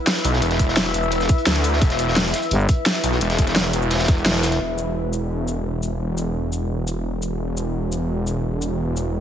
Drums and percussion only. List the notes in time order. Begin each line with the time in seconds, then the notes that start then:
0.07 snare, closed hi-hat
0.16 snare, closed hi-hat
0.24 closed hi-hat, open hi-hat, shaker
0.33 snare
0.42 closed hi-hat
0.51 snare, closed hi-hat
0.59 kick, closed hi-hat, shaker
0.69 snare
0.76 snare, closed hi-hat
0.86 snare, closed hi-hat
0.94 closed hi-hat, shaker
1.03 shaker
1.12 closed hi-hat
1.20 snare, shaker
1.29 kick, closed hi-hat, shaker
1.38 closed hi-hat
1.46 snare, closed hi-hat
1.55 snare, closed hi-hat
1.64 closed hi-hat, open hi-hat, shaker
1.73 snare
1.82 kick, closed hi-hat
1.90 snare, closed hi-hat
1.99 closed hi-hat, shaker
2.08 snare
2.16 snare, closed hi-hat, open hi-hat
2.33 snare, closed hi-hat, shaker
2.42 closed hi-hat, shaker
2.51 closed hi-hat
2.60 shaker
2.69 kick, closed hi-hat, shaker
2.86 snare, closed hi-hat
2.95 snare, closed hi-hat
3.04 closed hi-hat, open hi-hat, shaker
3.12 snare
3.21 closed hi-hat
3.30 snare, closed hi-hat
3.38 kick, closed hi-hat, shaker
3.47 snare, closed hi-hat
3.56 snare, closed hi-hat
3.65 snare, closed hi-hat
3.73 closed hi-hat, shaker
3.82 shaker
3.90 snare, closed hi-hat, open hi-hat
3.95 snare, open hi-hat
3.99 snare, open hi-hat, shaker
4.04 snare, open hi-hat
4.08 kick, closed hi-hat, shaker
4.17 closed hi-hat
4.25 snare, closed hi-hat
4.35 snare, closed hi-hat
4.43 snare, closed hi-hat, open hi-hat, shaker
4.52 snare, closed hi-hat
4.78 shaker
5.13 shaker
5.48 shaker
5.83 shaker
6.18 shaker
6.53 shaker
6.87 shaker
7.22 shaker
7.57 shaker
7.92 shaker
8.27 shaker
8.62 shaker
8.97 shaker